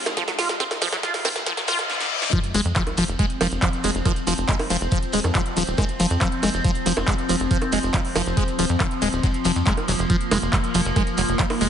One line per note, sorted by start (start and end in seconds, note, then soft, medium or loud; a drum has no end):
0.00 1.90 F3 medium
0.00 1.92 G#3 medium
0.00 riser medium
0.05 snare medium
0.05 closed hi-hat medium
0.05 high bongo medium
0.05 shekere soft
0.17 0.24 F3 loud
0.17 kick loud
0.17 snare loud
0.17 closed hi-hat medium
0.17 shekere soft
0.27 0.32 F#3 medium
0.27 snare medium
0.27 closed hi-hat medium
0.27 shekere soft
0.39 0.49 F4 medium
0.39 snare loud
0.39 open hi-hat loud
0.39 shekere medium
0.49 snare medium
0.49 closed hi-hat medium
0.49 shekere soft
0.60 0.64 C4 loud
0.60 kick loud
0.60 snare loud
0.60 closed hi-hat medium
0.60 shekere medium
0.70 snare medium
0.70 closed hi-hat medium
0.70 high bongo soft
0.70 shekere soft
0.82 0.88 F3 loud
0.82 snare loud
0.82 open hi-hat loud
0.82 shekere medium
0.92 0.97 F#3 medium
0.92 snare loud
0.92 closed hi-hat medium
0.92 shekere soft
1.03 1.13 F4 medium
1.03 kick loud
1.03 snare loud
1.03 closed hi-hat medium
1.03 shekere soft
1.14 snare medium
1.14 open hi-hat medium
1.14 shekere soft
1.25 1.29 C4 loud
1.25 snare loud
1.25 open hi-hat loud
1.25 high bongo medium
1.25 shekere medium
1.36 snare medium
1.36 shekere soft
1.46 1.53 F3 loud
1.46 kick loud
1.46 snare loud
1.46 closed hi-hat medium
1.46 reverse cymbal medium
1.46 shekere medium
1.57 1.61 F#3 medium
1.57 snare loud
1.57 closed hi-hat medium
1.57 shekere soft
1.68 1.78 F4 loud
1.68 snare loud
1.68 open hi-hat loud
1.68 shekere medium
1.79 snare medium
1.79 closed hi-hat medium
1.79 shekere soft
1.90 snare medium
2.00 snare medium
2.22 snare medium
2.33 2.40 F3 loud
2.33 11.69 F3 medium
2.33 9.26 C4 medium
2.33 kick loud
2.33 closed hi-hat medium
2.33 sub drop medium
2.33 shekere medium
2.44 closed hi-hat medium
2.44 shekere soft
2.54 2.61 F1 medium
2.54 2.61 G#3 loud
2.54 open hi-hat loud
2.54 shekere loud
2.65 2.72 F2 medium
2.65 closed hi-hat medium
2.65 shekere soft
2.75 2.83 F3 loud
2.75 kick loud
2.75 clap loud
2.75 closed hi-hat medium
2.75 shekere medium
2.87 closed hi-hat medium
2.87 high bongo soft
2.87 shekere soft
2.97 3.04 F1 medium
2.97 3.04 F3 loud
2.97 open hi-hat loud
2.97 shekere loud
3.08 3.15 F1 medium
3.08 closed hi-hat medium
3.08 shekere soft
3.19 3.26 G#3 loud
3.19 kick loud
3.19 closed hi-hat medium
3.19 shekere medium
3.30 closed hi-hat medium
3.30 shekere soft
3.41 3.48 F1 medium
3.41 3.47 F3 loud
3.41 open hi-hat loud
3.41 high bongo medium
3.41 shekere loud
3.52 3.58 F1 medium
3.52 closed hi-hat medium
3.52 shekere soft
3.62 3.69 F3 loud
3.62 kick loud
3.62 clap loud
3.62 closed hi-hat medium
3.62 shekere medium
3.73 closed hi-hat medium
3.73 shekere soft
3.84 3.91 F1 medium
3.84 3.91 G#3 loud
3.84 open hi-hat loud
3.84 shekere medium
3.95 4.01 F1 medium
3.95 closed hi-hat medium
3.95 shekere soft
4.05 4.12 F3 loud
4.05 kick loud
4.05 closed hi-hat medium
4.05 high bongo soft
4.05 shekere medium
4.16 closed hi-hat medium
4.16 shekere soft
4.27 4.34 F1 medium
4.27 4.34 F3 loud
4.27 open hi-hat loud
4.27 shekere loud
4.38 4.45 F1 medium
4.38 closed hi-hat medium
4.38 shekere soft
4.49 4.55 G#3 loud
4.49 kick loud
4.49 clap loud
4.49 closed hi-hat medium
4.49 shekere medium
4.59 open hi-hat medium
4.59 high bongo medium
4.59 shekere soft
4.70 4.77 F1 medium
4.70 4.77 F3 loud
4.70 open hi-hat loud
4.70 shekere medium
4.81 4.88 F1 medium
4.81 closed hi-hat medium
4.81 shekere soft
4.91 4.99 F3 loud
4.91 kick loud
4.91 closed hi-hat medium
4.91 shekere medium
5.03 closed hi-hat medium
5.03 shekere soft
5.13 5.20 D#1 medium
5.13 5.20 G#3 loud
5.13 open hi-hat loud
5.13 shekere loud
5.24 5.31 F2 medium
5.24 closed hi-hat medium
5.24 high bongo soft
5.24 shekere soft
5.35 5.42 F3 loud
5.35 kick loud
5.35 clap loud
5.35 closed hi-hat medium
5.35 shekere medium
5.46 closed hi-hat medium
5.46 shekere soft
5.57 5.63 D#1 medium
5.57 5.63 F3 loud
5.57 open hi-hat loud
5.57 shekere loud
5.67 5.74 D#1 medium
5.67 closed hi-hat medium
5.67 shekere soft
5.78 5.85 G#3 loud
5.78 kick loud
5.78 closed hi-hat medium
5.78 high bongo medium
5.78 shekere soft
5.88 closed hi-hat medium
5.88 shekere soft
6.00 6.06 F1 medium
6.00 6.06 F3 loud
6.00 open hi-hat loud
6.00 shekere medium
6.11 6.17 F2 medium
6.11 closed hi-hat medium
6.11 shekere soft
6.21 6.28 F3 loud
6.21 kick loud
6.21 clap loud
6.21 closed hi-hat medium
6.21 shekere medium
6.31 closed hi-hat medium
6.31 shekere soft
6.43 6.50 F1 medium
6.43 6.50 G#3 loud
6.43 open hi-hat loud
6.43 high bongo soft
6.43 shekere medium
6.54 6.60 F1 medium
6.54 closed hi-hat soft
6.54 shekere soft
6.64 6.71 F3 loud
6.64 kick loud
6.64 closed hi-hat medium
6.64 shekere medium
6.74 closed hi-hat medium
6.74 shekere soft
6.86 6.93 F1 loud
6.86 6.93 F3 loud
6.86 open hi-hat loud
6.86 shekere loud
6.97 7.04 F1 medium
6.97 closed hi-hat soft
6.97 high bongo medium
6.97 shekere soft
7.07 7.14 G#3 loud
7.07 kick loud
7.07 clap loud
7.07 closed hi-hat medium
7.07 shekere medium
7.18 closed hi-hat medium
7.18 shekere soft
7.29 7.36 F1 medium
7.29 7.36 F3 loud
7.29 open hi-hat loud
7.29 shekere loud
7.40 7.47 F1 medium
7.40 closed hi-hat medium
7.40 shekere soft
7.51 7.58 F3 loud
7.51 kick loud
7.51 closed hi-hat medium
7.51 shekere medium
7.61 closed hi-hat medium
7.61 high bongo soft
7.61 shekere soft
7.72 7.79 F1 medium
7.72 7.79 G#3 loud
7.72 open hi-hat loud
7.72 shekere medium
7.83 7.90 F1 medium
7.83 closed hi-hat medium
7.83 shekere soft
7.94 8.01 F3 loud
7.94 kick loud
7.94 clap loud
7.94 closed hi-hat medium
7.94 shekere soft
8.05 open hi-hat medium
8.05 shekere soft
8.16 8.22 F1 medium
8.16 8.22 F3 loud
8.16 open hi-hat loud
8.16 high bongo medium
8.16 shekere loud
8.26 8.33 F1 medium
8.26 closed hi-hat soft
8.26 shekere soft
8.37 8.44 G#3 loud
8.37 kick loud
8.37 closed hi-hat medium
8.37 shekere medium
8.48 closed hi-hat soft
8.48 shekere soft
8.59 8.65 D#1 loud
8.59 8.65 F3 loud
8.59 open hi-hat loud
8.59 shekere loud
8.69 8.76 F2 medium
8.69 closed hi-hat soft
8.69 shekere soft
8.80 8.87 F3 loud
8.80 kick loud
8.80 clap loud
8.80 closed hi-hat medium
8.80 high bongo soft
8.80 shekere medium
8.91 closed hi-hat medium
8.91 shekere soft
9.02 9.09 D#1 medium
9.02 9.09 G#3 loud
9.02 open hi-hat loud
9.02 shekere medium
9.13 9.19 D#1 medium
9.13 closed hi-hat medium
9.13 shekere soft
9.23 9.27 F#3 medium
9.23 11.69 A#3 medium
9.23 kick loud
9.23 closed hi-hat medium
9.23 shekere medium
9.34 closed hi-hat medium
9.34 shekere soft
9.45 9.52 F1 medium
9.45 9.52 F3 loud
9.45 open hi-hat loud
9.45 shekere loud
9.56 9.63 F2 medium
9.56 closed hi-hat medium
9.56 shekere soft
9.67 9.73 G#3 loud
9.67 kick loud
9.67 clap loud
9.67 closed hi-hat medium
9.67 shekere medium
9.77 closed hi-hat medium
9.77 high bongo soft
9.77 shekere soft
9.88 9.95 F1 medium
9.88 9.92 F#3 medium
9.88 open hi-hat loud
9.88 shekere medium
9.99 10.06 F1 medium
9.99 closed hi-hat medium
9.99 shekere soft
10.10 10.17 F3 loud
10.10 kick loud
10.10 closed hi-hat medium
10.10 shekere medium
10.21 closed hi-hat medium
10.21 shekere soft
10.31 10.38 F1 loud
10.31 10.38 G#3 loud
10.31 open hi-hat loud
10.31 high bongo medium
10.31 shekere loud
10.42 10.49 F1 medium
10.42 closed hi-hat soft
10.42 shekere soft
10.53 10.57 F#3 medium
10.53 kick loud
10.53 clap loud
10.53 closed hi-hat medium
10.53 shekere medium
10.64 closed hi-hat medium
10.64 shekere soft
10.74 10.81 F1 medium
10.74 10.81 F3 loud
10.74 open hi-hat loud
10.74 shekere medium
10.85 10.92 F1 medium
10.85 closed hi-hat soft
10.85 shekere soft
10.96 11.03 G#3 loud
10.96 kick loud
10.96 closed hi-hat medium
10.96 high bongo soft
10.96 shekere medium
11.07 closed hi-hat medium
11.07 shekere soft
11.17 11.24 F1 medium
11.17 11.22 F#3 medium
11.17 open hi-hat loud
11.17 shekere medium
11.28 11.35 F1 medium
11.28 closed hi-hat medium
11.28 shekere soft
11.39 11.46 F3 loud
11.39 kick loud
11.39 clap loud
11.39 closed hi-hat medium
11.39 shekere soft
11.50 open hi-hat medium
11.50 high bongo medium
11.50 shekere soft
11.61 11.68 F1 loud
11.61 11.68 G#3 loud
11.61 open hi-hat loud
11.61 shekere medium